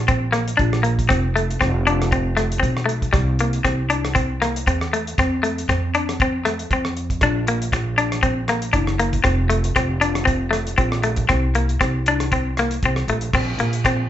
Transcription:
Already playing: upright bass A#1
0.08 clean electric guitar C4, kick, closed hi-hat
0.32 clean electric guitar A#3, cross-stick, closed hi-hat
0.48 closed hi-hat
0.57 upright bass A#1, clean electric guitar D4, kick, closed hi-hat
0.73 cross-stick
0.83 clean electric guitar A#3, closed hi-hat
0.99 kick, closed hi-hat
1.09 upright bass F1, clean electric guitar C4, kick, cross-stick, closed hi-hat
1.36 clean electric guitar A3, closed hi-hat
1.51 closed hi-hat
1.61 upright bass F1, clean electric guitar C4, kick, cross-stick, closed hi-hat
1.87 clean electric guitar D4, closed hi-hat
2.02 cross-stick, closed hi-hat
2.12 clean electric guitar C4, kick, closed hi-hat
2.37 clean electric guitar A3, cross-stick, closed hi-hat
2.52 closed hi-hat
2.60 upright bass B1, clean electric guitar C4, kick, closed hi-hat
2.77 cross-stick
2.86 clean electric guitar A3, closed hi-hat
3.02 kick, closed hi-hat
3.13 upright bass C2, clean electric guitar G3, kick, cross-stick, closed hi-hat
3.39 clean electric guitar A#3, closed hi-hat
3.53 closed hi-hat
3.64 upright bass C2, clean electric guitar C4, kick, cross-stick, closed hi-hat
3.90 clean electric guitar D4, closed hi-hat
4.05 cross-stick, closed hi-hat
4.15 clean electric guitar C4, kick, closed hi-hat
4.42 clean electric guitar A#3, cross-stick, closed hi-hat
4.56 closed hi-hat
4.67 upright bass E2, clean electric guitar C4, kick, closed hi-hat
4.81 cross-stick
4.93 clean electric guitar A3, closed hi-hat
5.07 closed hi-hat
5.18 upright bass F2, clean electric guitar C4, kick, cross-stick, closed hi-hat
5.43 clean electric guitar A3, closed hi-hat
5.58 closed hi-hat
5.69 upright bass F2, clean electric guitar C4, kick, cross-stick, closed hi-hat
5.95 clean electric guitar D4, closed hi-hat
6.09 cross-stick, closed hi-hat
6.20 clean electric guitar C4, kick, closed hi-hat
6.45 clean electric guitar A3, cross-stick, closed hi-hat
6.59 closed hi-hat
6.70 upright bass F2, clean electric guitar C4, kick, closed hi-hat
6.85 cross-stick
6.97 closed hi-hat
7.10 kick, closed hi-hat
7.21 upright bass A#1, clean electric guitar D4, kick, cross-stick, closed hi-hat
7.47 clean electric guitar A#3, closed hi-hat
7.62 closed hi-hat
7.72 upright bass A#1, muted clean electric guitar stroke, kick, cross-stick, closed hi-hat
7.98 clean electric guitar D4, closed hi-hat
8.12 cross-stick, closed hi-hat
8.23 clean electric guitar C4, kick, closed hi-hat
8.48 clean electric guitar A#3, cross-stick, closed hi-hat
8.62 closed hi-hat
8.73 upright bass F#1, clean electric guitar D4, kick, closed hi-hat
8.87 cross-stick
8.99 clean electric guitar A#3, closed hi-hat
9.13 kick, closed hi-hat
9.24 upright bass F1, clean electric guitar C4, kick, cross-stick, closed hi-hat
9.50 clean electric guitar A3, closed hi-hat
9.64 closed hi-hat
9.76 upright bass F1, clean electric guitar C4, kick, cross-stick, closed hi-hat
10.01 clean electric guitar D4, closed hi-hat
10.15 cross-stick, closed hi-hat
10.25 clean electric guitar C4, kick, closed hi-hat
10.51 clean electric guitar A3, cross-stick, closed hi-hat
10.67 closed hi-hat
10.78 upright bass A#1, clean electric guitar C4, kick, closed hi-hat
10.92 cross-stick
11.03 clean electric guitar A3, closed hi-hat
11.16 kick, closed hi-hat
11.29 upright bass C2, clean electric guitar C4, kick, cross-stick, closed hi-hat
11.55 clean electric guitar A#3, closed hi-hat
11.69 closed hi-hat
11.81 upright bass C2, clean electric guitar C4, kick, cross-stick, closed hi-hat
12.06 clean electric guitar D4, closed hi-hat
12.20 cross-stick, closed hi-hat
12.32 clean electric guitar C4, kick, closed hi-hat
12.57 clean electric guitar A#3, cross-stick, closed hi-hat
12.71 closed hi-hat
12.83 upright bass C2, clean electric guitar C4, kick, closed hi-hat
12.96 cross-stick
13.07 upright bass A#1, clean electric guitar A3, closed hi-hat
13.21 closed hi-hat
13.33 upright bass A#1, clean electric guitar C4, kick, cross-stick, crash
13.58 upright bass A#1, clean electric guitar A#3, closed hi-hat
13.73 closed hi-hat
13.85 clean electric guitar C4, kick, cross-stick, closed hi-hat

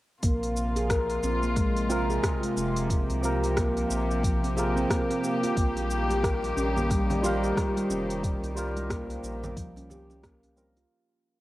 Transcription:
0.22 analog synth bass A#1, string section C3 F3 A#3 F4, handpan A#3, kick, open hi-hat, shaker
0.43 open hi-hat, shaker
0.57 shaker
0.76 handpan G#4, open hi-hat, shaker
0.90 handpan A#4, kick, cross-stick, open hi-hat, shaker
1.10 open hi-hat, shaker
1.23 analog synth bass A#1, handpan C4, shaker
1.43 handpan A#3, shaker
1.56 handpan G#3, kick, cross-stick, open hi-hat, shaker
1.76 open hi-hat, shaker
1.89 tine electric piano C4 F4 A#4, handpan F4, shaker
2.10 handpan G#4, shaker
2.23 kick, cross-stick, open hi-hat, shaker
2.43 handpan G#3, open hi-hat, shaker
2.57 analog synth bass F1, handpan C4, shaker
2.76 open hi-hat, shaker
2.89 string section G4, kick, open hi-hat, shaker
3.10 analog synth bass C2, open hi-hat, shaker
3.21 tine electric piano C4 F4 G4 A#4, shaker
3.44 open hi-hat, shaker
3.56 handpan A#3, kick, cross-stick, open hi-hat, shaker
3.77 open hi-hat, shaker
3.90 analog synth bass A#1, shaker
4.11 shaker
4.23 handpan F3, kick, open hi-hat, shaker
4.43 handpan C4, open hi-hat, shaker
4.56 tine electric piano C4 F4 A#4, handpan G#4, shaker
4.77 handpan C4, shaker
4.90 handpan A#3, kick, cross-stick, open hi-hat, shaker
5.10 handpan C4, open hi-hat, shaker
5.24 shaker
5.43 handpan F4, open hi-hat, shaker
5.56 analog synth bass A#1, string section D#3 G3, handpan A#3, kick, open hi-hat, shaker
5.76 open hi-hat, high conga, shaker
5.90 shaker
6.09 handpan G4, open hi-hat, high conga, shaker
6.23 handpan A#4, kick, cross-stick, open hi-hat, shaker
6.43 open hi-hat, muted conga, shaker
6.56 analog synth bass A#1, handpan C#4, shaker
6.76 handpan A#3, low conga, shaker
6.90 handpan G3, kick, cross-stick, open hi-hat, shaker
7.10 open hi-hat, low conga, shaker
7.22 tine electric piano G3 F4 C5, handpan F4, muted conga, shaker
7.26 tine electric piano A#4
7.43 handpan G4, shaker
7.57 kick, cross-stick, open hi-hat, high conga, shaker
7.77 handpan G3, open hi-hat, muted conga, shaker
7.90 analog synth bass F1, handpan C#4, shaker
8.10 open hi-hat, shaker
8.23 kick, open hi-hat, shaker
8.43 analog synth bass C2, open hi-hat, shaker
8.55 tine electric piano G3 F4 C5, shaker
8.59 tine electric piano A#4
8.77 open hi-hat, high conga, shaker
8.90 handpan A#3, kick, cross-stick, open hi-hat, shaker
9.10 open hi-hat, muted conga, shaker
9.23 analog synth bass A#1, shaker
9.44 low conga, shaker
9.57 analog synth bass C2, handpan F3, kick, open hi-hat, shaker
9.76 handpan C#4, open hi-hat, muted conga, shaker
9.90 handpan G4, low conga, shaker
10.10 handpan C#4, muted conga, shaker
10.23 handpan A#3, kick, cross-stick, open hi-hat, shaker
10.43 handpan C#4, open hi-hat, shaker
10.56 tine electric piano G3 C4 F4 A#4, high conga, shaker
10.77 handpan F4, open hi-hat, shaker

